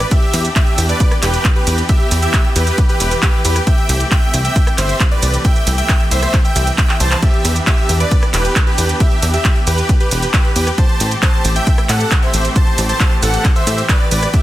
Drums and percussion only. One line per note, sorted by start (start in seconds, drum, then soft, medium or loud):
0.00 cross-stick medium
0.00 closed hi-hat medium
0.00 shaker soft
0.11 kick loud
0.11 closed hi-hat soft
0.11 ride medium
0.11 shaker soft
0.22 closed hi-hat soft
0.34 open hi-hat loud
0.34 ride medium
0.34 shaker medium
0.45 closed hi-hat medium
0.45 shaker soft
0.56 kick loud
0.56 clap loud
0.56 closed hi-hat soft
0.56 ride medium
0.56 shaker soft
0.67 closed hi-hat soft
0.78 open hi-hat loud
0.78 ride medium
0.78 shaker medium
0.89 closed hi-hat medium
0.89 shaker soft
1.00 kick loud
1.00 closed hi-hat soft
1.00 ride medium
1.00 shaker soft
1.11 cross-stick medium
1.11 closed hi-hat soft
1.11 shaker soft
1.23 clap medium
1.23 open hi-hat loud
1.23 ride medium
1.23 shaker medium
1.34 closed hi-hat soft
1.34 shaker soft
1.45 kick loud
1.45 clap loud
1.45 closed hi-hat medium
1.45 ride medium
1.45 shaker soft
1.56 closed hi-hat soft
1.67 open hi-hat loud
1.67 ride medium
1.67 shaker medium
1.78 closed hi-hat medium
1.78 shaker soft
1.89 kick loud
1.89 closed hi-hat medium
1.89 ride medium
1.89 shaker soft
2.00 closed hi-hat soft
2.11 open hi-hat loud
2.11 ride medium
2.11 shaker medium
2.22 closed hi-hat medium
2.22 shaker soft
2.34 kick loud
2.34 clap loud
2.34 closed hi-hat medium
2.34 ride medium
2.34 shaker soft
2.45 closed hi-hat soft
2.56 open hi-hat loud
2.56 ride medium
2.56 shaker medium
2.67 closed hi-hat medium
2.67 shaker soft
2.78 kick loud
2.78 closed hi-hat medium
2.78 ride medium
2.78 shaker soft
2.89 closed hi-hat soft
2.89 shaker soft
3.00 open hi-hat loud
3.00 ride medium
3.00 shaker medium
3.11 closed hi-hat medium
3.11 shaker soft
3.22 kick loud
3.22 clap loud
3.22 closed hi-hat medium
3.22 ride medium
3.22 shaker soft
3.34 closed hi-hat soft
3.45 open hi-hat loud
3.45 ride medium
3.45 shaker medium
3.56 cross-stick medium
3.56 closed hi-hat medium
3.56 shaker soft
3.67 kick loud
3.67 closed hi-hat medium
3.67 ride medium
3.67 shaker soft
3.78 closed hi-hat soft
3.89 open hi-hat loud
3.89 ride medium
3.89 shaker medium
4.00 closed hi-hat medium
4.00 shaker soft
4.11 kick loud
4.11 clap loud
4.11 closed hi-hat medium
4.11 ride medium
4.11 shaker soft
4.23 closed hi-hat soft
4.34 open hi-hat loud
4.34 ride medium
4.34 shaker medium
4.45 closed hi-hat medium
4.45 shaker soft
4.56 kick loud
4.56 closed hi-hat medium
4.56 ride medium
4.56 shaker soft
4.67 cross-stick medium
4.67 closed hi-hat soft
4.67 shaker soft
4.78 clap medium
4.78 open hi-hat loud
4.78 ride medium
4.78 shaker medium
4.89 closed hi-hat medium
4.89 shaker soft
5.00 kick loud
5.00 clap loud
5.00 closed hi-hat medium
5.00 ride medium
5.00 shaker soft
5.11 closed hi-hat soft
5.23 open hi-hat loud
5.23 ride medium
5.23 shaker medium
5.34 closed hi-hat medium
5.34 shaker soft
5.45 kick loud
5.45 closed hi-hat medium
5.45 ride medium
5.45 shaker soft
5.56 closed hi-hat soft
5.56 shaker soft
5.67 open hi-hat loud
5.67 ride medium
5.67 shaker medium
5.78 closed hi-hat medium
5.78 shaker soft
5.89 kick loud
5.89 clap loud
5.89 closed hi-hat medium
5.89 ride medium
5.89 shaker soft
6.00 closed hi-hat soft
6.11 open hi-hat loud
6.11 ride medium
6.11 shaker medium
6.23 cross-stick medium
6.23 closed hi-hat medium
6.23 shaker soft
6.34 kick loud
6.34 clap medium
6.34 closed hi-hat medium
6.34 ride medium
6.34 shaker soft
6.45 closed hi-hat soft
6.45 shaker soft
6.56 open hi-hat loud
6.56 ride medium
6.56 shaker medium
6.67 closed hi-hat medium
6.67 shaker soft
6.78 kick loud
6.78 clap loud
6.78 closed hi-hat medium
6.78 ride medium
6.78 shaker soft
6.89 clap medium
6.89 closed hi-hat soft
7.00 open hi-hat loud
7.00 ride medium
7.00 shaker medium
7.11 clap loud
7.11 closed hi-hat medium
7.11 shaker soft
7.23 kick loud
7.23 closed hi-hat medium
7.23 ride medium
7.23 shaker soft
7.34 closed hi-hat soft
7.45 open hi-hat loud
7.45 ride medium
7.45 shaker medium
7.56 closed hi-hat medium
7.56 shaker soft
7.67 kick loud
7.67 clap loud
7.67 closed hi-hat medium
7.67 ride medium
7.67 shaker soft
7.78 closed hi-hat soft
7.89 open hi-hat loud
7.89 ride medium
7.89 shaker medium
8.00 closed hi-hat medium
8.00 shaker soft
8.11 kick loud
8.11 closed hi-hat medium
8.11 ride medium
8.11 shaker soft
8.23 cross-stick medium
8.23 closed hi-hat soft
8.23 shaker soft
8.34 clap medium
8.34 open hi-hat loud
8.34 ride medium
8.34 shaker medium
8.45 closed hi-hat medium
8.45 shaker soft
8.56 kick loud
8.56 clap loud
8.56 closed hi-hat medium
8.56 ride medium
8.56 shaker soft
8.67 closed hi-hat soft
8.78 open hi-hat loud
8.78 ride medium
8.78 shaker medium
8.89 closed hi-hat medium
8.89 shaker soft
9.00 kick loud
9.00 closed hi-hat medium
9.00 ride medium
9.00 shaker soft
9.11 closed hi-hat soft
9.23 open hi-hat loud
9.23 ride medium
9.23 shaker medium
9.34 closed hi-hat medium
9.34 shaker soft
9.45 kick loud
9.45 clap loud
9.45 closed hi-hat medium
9.45 ride medium
9.45 shaker soft
9.56 closed hi-hat soft
9.67 open hi-hat loud
9.67 ride medium
9.67 shaker medium
9.78 closed hi-hat medium
9.78 shaker soft
9.89 kick loud
9.89 closed hi-hat soft
9.89 ride medium
9.89 shaker soft
10.00 closed hi-hat soft
10.00 shaker soft
10.11 open hi-hat loud
10.11 ride medium
10.11 shaker medium
10.23 closed hi-hat soft
10.23 shaker soft
10.34 kick loud
10.34 clap loud
10.34 closed hi-hat medium
10.34 ride medium
10.34 shaker soft
10.45 closed hi-hat soft
10.56 open hi-hat loud
10.56 ride medium
10.56 shaker medium
10.67 cross-stick medium
10.67 closed hi-hat medium
10.67 shaker soft
10.78 kick loud
10.78 closed hi-hat medium
10.78 ride medium
10.78 shaker soft
10.89 closed hi-hat soft
11.00 open hi-hat loud
11.00 ride medium
11.00 shaker medium
11.11 closed hi-hat medium
11.11 shaker soft
11.23 kick loud
11.23 clap loud
11.23 closed hi-hat soft
11.23 ride medium
11.23 shaker soft
11.34 closed hi-hat soft
11.45 open hi-hat loud
11.45 ride medium
11.45 shaker medium
11.56 closed hi-hat medium
11.56 shaker soft
11.67 kick loud
11.67 closed hi-hat medium
11.67 ride medium
11.67 shaker soft
11.78 cross-stick medium
11.78 closed hi-hat soft
11.78 shaker soft
11.89 clap medium
11.89 open hi-hat loud
11.89 ride medium
11.89 shaker medium
12.00 closed hi-hat medium
12.00 shaker soft
12.11 kick loud
12.11 clap loud
12.11 closed hi-hat medium
12.11 ride medium
12.11 shaker soft
12.23 closed hi-hat soft
12.34 open hi-hat loud
12.34 ride medium
12.34 shaker medium
12.45 closed hi-hat medium
12.45 shaker soft
12.56 kick loud
12.56 closed hi-hat soft
12.56 ride medium
12.56 shaker soft
12.67 closed hi-hat soft
12.78 open hi-hat loud
12.78 ride medium
12.78 shaker medium
12.89 closed hi-hat medium
12.89 shaker soft
13.00 kick loud
13.00 clap loud
13.00 closed hi-hat soft
13.00 ride medium
13.00 shaker soft
13.11 closed hi-hat soft
13.23 open hi-hat loud
13.23 ride medium
13.23 shaker medium
13.34 closed hi-hat medium
13.34 shaker soft
13.45 kick loud
13.45 clap medium
13.45 closed hi-hat soft
13.45 ride medium
13.45 shaker soft
13.56 closed hi-hat soft
13.56 shaker soft
13.67 open hi-hat loud
13.67 ride medium
13.67 shaker medium
13.78 closed hi-hat soft
13.78 shaker soft
13.89 kick loud
13.89 clap loud
13.89 closed hi-hat medium
13.89 ride medium
13.89 shaker soft
14.00 closed hi-hat soft
14.11 open hi-hat loud
14.11 ride medium
14.11 shaker medium
14.23 cross-stick medium
14.23 closed hi-hat medium
14.23 shaker soft
14.34 kick loud
14.34 closed hi-hat soft
14.34 ride medium
14.34 shaker soft